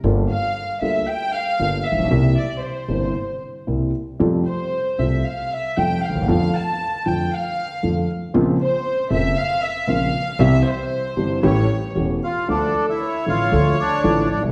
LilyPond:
<<
  \new Staff \with { instrumentName = "Violin section" } { \time 4/4 \key f \major \tempo 4 = 116 r8 f''4 e''8 g''8 f''4 e''8~ | e''8 d''8 c''4. r4. | r8 c''4 e''8 f''8 e''8 g''8 f''8 | f''8 a''4 g''8 f''4. r8 |
r8 c''4 e''8 f''8 e''8 f''4 | e''8 c''4. cis''4 r4 | \key d \minor a'4 cis''2. | }
  \new Staff \with { instrumentName = "Bandoneon" } { \time 4/4 \key f \major r1 | r1 | r1 | r1 |
r1 | r2. r8 <f' f''>8 | \key d \minor <d' d''>8. <e' e''>8. <f' f''>4 <d' d''>4 <d' d''>8 | }
  \new Staff \with { instrumentName = "Grand piano" } { \clef bass \time 4/4 \key f \major <g,, g, d g bes f'>8 r4 <d, d g bes f'>8 r4 <g,, g, d g bes f'>8 r32 a,,32 bes,,32 b,,32 | <c, c g bes e'>8 r4 <g,, g, c g bes e'>8 r4 <c, c g bes e'>8 r8 | <f, c f g a f'>8 r4 <c, c g a f'>8 r4 <f, c f g a f'>8 r32 d,32 ees,32 e,32 | <f, d f a f'>8 r4 <f, d f a f'>8 r4 <f, d f a f'>8 r8 |
<bes,, bes, des bes c' f'>8 r4 <f,, f, des bes c' f'>8 r4 <bes,, bes, des bes c' f'>8 r8 | <c, c e g c' g'>8 r4 <g,, g, e g c' g'>8 <a,, a, e a cis' g'>8 r8 <e,, e, e a cis' g'>8 r8 | \key d \minor <d, d f a f'>8 r4 <a,, a, d f a f'>8 <d, d f a f'>8 r8 <a,, a, d f a f'>8 r32 b,,32 c,32 r32 | }
  \new Staff \with { instrumentName = "Upright bass" } { \clef bass \time 4/4 \key f \major g,,16. r4 r32 d,16. r4 r32 g,,16. r16 a,,32 bes,,32 b,,32 | c,16. r4 r32 g,,16. r4 r32 c,16. r8 r32 | f,16. r4 r32 c,16. r4 r32 f,16. r16 d,32 ees,32 e,32 | f,16. r4 r32 f,16. r4 r32 f,16. r8 r32 |
bes,,16. r4 r32 f,,16. r4 r32 bes,,16. r8 r32 | c,16. r4 r32 g,,16. r32 a,,16. r8 r32 e,,16. r8 r32 | \key d \minor d,16. r4 r32 a,,16. r32 d,16. r8 r32 a,,16. r16 b,,32 c,32 r32 | }
>>